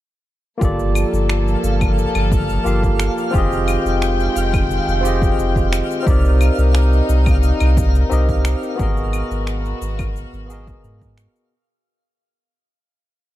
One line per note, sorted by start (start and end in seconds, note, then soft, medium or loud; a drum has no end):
0.58 1.05 G1 medium
0.58 3.31 F3 medium
0.58 2.60 A#3 medium
0.58 3.31 A#3 medium
0.58 2.61 F4 medium
0.58 2.62 G4 medium
0.58 3.31 A4 medium
0.58 11.54 F5 medium
0.58 kick loud
0.62 2.63 A4 medium
0.62 2.64 D5 medium
0.62 cabasa soft
0.79 cabasa soft
0.95 cabasa medium
0.95 claves medium
1.13 1.56 G1 medium
1.13 cabasa soft
1.29 finger snap medium
1.29 cabasa soft
1.48 cabasa soft
1.64 2.07 G1 medium
1.64 cabasa medium
1.81 kick medium
1.81 cabasa soft
1.81 claves medium
1.98 cabasa soft
2.15 2.58 G1 medium
2.15 cabasa soft
2.15 claves medium
2.32 kick loud
2.32 cabasa medium
2.49 cabasa soft
2.64 3.09 G1 medium
2.64 3.29 A#3 medium
2.64 3.30 F4 medium
2.64 3.30 G4 medium
2.64 3.31 A4 medium
2.64 3.31 F5 medium
2.64 cabasa soft
2.83 kick medium
2.83 cabasa soft
2.99 finger snap medium
2.99 cabasa medium
3.18 cabasa soft
3.31 3.77 F1 medium
3.31 6.04 D#3 medium
3.31 6.04 G#3 medium
3.31 4.99 C4 medium
3.31 5.00 F4 medium
3.31 5.01 G4 medium
3.31 6.04 G5 medium
3.31 kick loud
3.31 cabasa soft
3.36 5.01 G#4 medium
3.36 5.02 D#5 loud
3.52 cabasa soft
3.68 cabasa medium
3.68 claves medium
3.85 4.28 F1 medium
3.85 cabasa soft
4.02 finger snap medium
4.02 cabasa soft
4.20 cabasa soft
4.36 4.79 F1 medium
4.36 cabasa medium
4.54 kick loud
4.54 cabasa soft
4.54 claves medium
4.71 cabasa soft
4.88 5.30 F1 loud
4.88 cabasa soft
5.01 6.01 C4 medium
5.01 6.02 F4 medium
5.01 6.03 G4 medium
5.05 6.04 G#4 medium
5.05 6.05 D#5 medium
5.05 cabasa medium
5.22 kick medium
5.22 cabasa soft
5.38 5.82 F1 medium
5.38 cabasa soft
5.56 kick medium
5.56 cabasa soft
5.73 finger snap medium
5.73 cabasa medium
5.91 cabasa soft
6.03 8.05 C4 medium
6.03 8.06 D#4 medium
6.03 8.07 G4 medium
6.03 kick loud
6.07 6.50 C2 loud
6.07 8.77 D#4 medium
6.07 11.48 A#4 medium
6.07 8.08 A#4 medium
6.07 8.09 D5 medium
6.07 cabasa soft
6.25 cabasa soft
6.41 cabasa medium
6.41 claves medium
6.58 7.01 C2 medium
6.58 cabasa soft
6.75 finger snap medium
6.75 cabasa soft
6.93 cabasa soft
7.09 7.52 C2 medium
7.09 cabasa medium
7.26 kick loud
7.26 cabasa soft
7.26 claves medium
7.43 cabasa soft
7.60 8.03 C2 loud
7.60 cabasa soft
7.60 claves medium
7.77 kick loud
7.77 cabasa medium
7.95 cabasa soft
8.09 8.55 C2 medium
8.09 8.75 C4 medium
8.09 8.75 D#4 medium
8.09 8.75 G4 medium
8.09 8.76 A#4 medium
8.09 8.76 D#5 medium
8.09 cabasa soft
8.29 kick medium
8.29 cabasa soft
8.45 finger snap medium
8.45 cabasa medium
8.63 cabasa soft
8.76 9.23 G#1 loud
8.76 11.50 B2 medium
8.76 10.44 B3 medium
8.76 10.45 F#4 medium
8.76 11.49 F#4 medium
8.76 10.46 G#4 medium
8.76 kick loud
8.76 cabasa soft
8.81 10.47 A#4 medium
8.81 10.48 D#5 loud
8.97 cabasa soft
9.13 cabasa medium
9.13 claves medium
9.31 9.74 G#1 medium
9.31 cabasa soft
9.47 finger snap medium
9.47 cabasa soft
9.65 cabasa soft
9.82 10.25 G#1 medium
9.82 cabasa medium
9.99 kick loud
9.99 cabasa soft
9.99 claves medium
10.16 cabasa soft
10.33 10.76 G#1 loud
10.33 cabasa soft
10.46 11.46 B3 medium
10.46 11.47 F#4 medium
10.46 11.48 G#4 medium
10.46 cabasa medium
10.52 11.49 A#4 medium
10.52 11.50 D#5 medium
10.67 kick loud
10.67 cabasa soft
10.84 11.27 G#2 medium
10.84 cabasa soft
11.02 kick medium
11.02 cabasa soft
11.18 finger snap medium
11.18 cabasa medium
11.36 cabasa soft